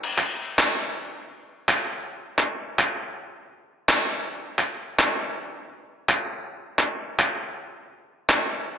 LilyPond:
\new DrumStaff \with { instrumentName = "Drums" } \drummode { \time 4/4 \tempo 4 = 109 cymc16 hc8. hc4 r4 hc4 | r16 hc8. hc4 r4 hc4 | r16 hc8. hc4 r4 hc4 | r16 hc8. hc4 r4 hc4 | }